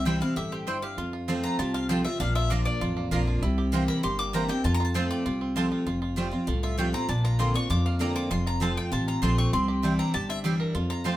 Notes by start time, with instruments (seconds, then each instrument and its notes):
Already playing: upright bass C2, steel-string acoustic guitar C3, five-string banjo E4 G4
0.05 steel-string acoustic guitar E3 G3 C4 E4, mandolin C4 E4 C5 G5, five-string banjo C4
0.21 steel-string acoustic guitar C4 E4, five-string banjo E4, mandolin F5
0.36 upright bass G1, steel-string acoustic guitar A2, five-string banjo G4, mandolin E5
0.52 five-string banjo C4, mandolin G4
0.67 steel-string acoustic guitar G2, mandolin C4 E4 C5 G5, five-string banjo E4
0.82 five-string banjo G4, mandolin F5
0.98 upright bass F2, steel-string acoustic guitar F2, five-string banjo F4
1.13 five-string banjo F4
1.28 steel-string acoustic guitar F3 A3 C4 F4, mandolin C4 F4 C5 A5, five-string banjo C4
1.44 five-string banjo F4, mandolin A#5
1.59 upright bass C2, steel-string acoustic guitar C3, five-string banjo F4, mandolin A5
1.74 five-string banjo F4, mandolin F5
1.89 steel-string acoustic guitar F3 A3 C4 F4, mandolin C4 F4 C5 G5 A5, five-string banjo C4
2.05 steel-string acoustic guitar C4 F4, five-string banjo F4, mandolin E5
2.20 upright bass A#1, steel-string acoustic guitar A#2, five-string banjo D4, mandolin F5
2.35 five-string banjo F4, mandolin E5
2.50 steel-string acoustic guitar F3 A#3 D4 F4, mandolin A#3 F4 D5 A#5, five-string banjo A#3
2.65 five-string banjo D4, mandolin D5
2.81 upright bass A1, steel-string acoustic guitar F2, five-string banjo F4
2.97 five-string banjo A#3
3.11 upright bass A#1, steel-string acoustic guitar F3 A#3 D4 F4, mandolin A#3 F4 D5 A#5, five-string banjo D4
3.27 five-string banjo F4
3.42 upright bass C2, steel-string acoustic guitar C3, five-string banjo E4
3.58 five-string banjo G4
3.72 steel-string acoustic guitar E3 A#3 C4 E4, mandolin A#3 E4 C5 G5, five-string banjo A#3
3.88 five-string banjo A#4, mandolin B5
4.03 upright bass G1, steel-string acoustic guitar G2, five-string banjo G4, mandolin C6
4.19 five-string banjo A#3, mandolin D6
4.33 steel-string acoustic guitar E3 A#3 C4 E4, mandolin A#3 E4 C5 G5 A#5, five-string banjo A#4
4.48 steel-string acoustic guitar C4 E4, five-string banjo G4, mandolin G5
4.64 upright bass F2, steel-string acoustic guitar F2, five-string banjo F4, mandolin A5
4.74 mandolin A#5
4.80 five-string banjo F4
4.85 mandolin A5
4.94 steel-string acoustic guitar F3 A3 C4 F4, mandolin C4 F4 C5 G5 A5, five-string banjo C4
5.11 five-string banjo F4, mandolin D5
5.26 upright bass C2, steel-string acoustic guitar C3, five-string banjo F4
5.41 five-string banjo C4
5.56 steel-string acoustic guitar F3 A3 C4 F4, mandolin C4 F4 C5 A5, five-string banjo F4
5.72 five-string banjo F4
5.87 upright bass F1, steel-string acoustic guitar F2, five-string banjo F4
6.02 five-string banjo F4
6.16 steel-string acoustic guitar F3 G3 C4 F4, mandolin A3 F4 C5 G5, five-string banjo C4
6.32 steel-string acoustic guitar C4 F4, five-string banjo F4
6.47 upright bass C2, steel-string acoustic guitar A2, five-string banjo F4
6.63 five-string banjo F4, mandolin E5
6.77 steel-string acoustic guitar F3 G3 C4 F4, mandolin A3 F4 C5 G5, five-string banjo F4
6.93 five-string banjo C4, steel-string acoustic guitar C4 F4, mandolin A#5
7.09 upright bass A#1, steel-string acoustic guitar A#2, five-string banjo D4, mandolin A5
7.24 five-string banjo F4, mandolin A#5
7.39 steel-string acoustic guitar D3 A#3 C4 F4, five-string banjo A#3, mandolin C4 F4 D5 A#5 C6
7.54 steel-string acoustic guitar C4 F4, five-string banjo D4, mandolin C#6
7.70 steel-string acoustic guitar F2, upright bass F2, five-string banjo F4, mandolin D6
7.86 five-string banjo A#3, mandolin F5
7.99 steel-string acoustic guitar D3 A#3 C4 F4, mandolin C4 F4 D5 A#5, five-string banjo D4
8.16 five-string banjo F4, mandolin D6
8.31 upright bass F1, steel-string acoustic guitar F2, five-string banjo F4, mandolin C6
8.47 five-string banjo F4, mandolin A#5
8.60 steel-string acoustic guitar F3 A3 C4 F4, mandolin C4 F4 C5 A5, five-string banjo C4
8.77 five-string banjo F4, mandolin G5
8.92 upright bass A1, steel-string acoustic guitar C3, five-string banjo F4, mandolin A5
9.08 five-string banjo F4, mandolin A#5
9.22 upright bass A#1, steel-string acoustic guitar F3 A3 C4 F4, mandolin C4 F4 C5 A5 C6, five-string banjo F4
9.38 five-string banjo C4, mandolin C#6
9.53 upright bass C2, steel-string acoustic guitar C3, five-string banjo C4, mandolin C6
9.68 five-string banjo G4
9.82 steel-string acoustic guitar E3 G3 D4 E4, mandolin C4 E4 D5 G5, five-string banjo D4
9.99 five-string banjo C4, mandolin A#5
10.14 upright bass G1, steel-string acoustic guitar G2, five-string banjo G4, mandolin A5
10.29 five-string banjo C4, mandolin E5
10.44 steel-string acoustic guitar E3 G3 D4 E4, mandolin C4 E4 D5 G5, five-string banjo G4
10.60 five-string banjo A#4
10.75 upright bass F2, steel-string acoustic guitar F2, five-string banjo F4
10.90 five-string banjo F4, mandolin A#5
11.04 steel-string acoustic guitar F3 A3 C4 F4, mandolin C4 F4 C5 A5, five-string banjo C4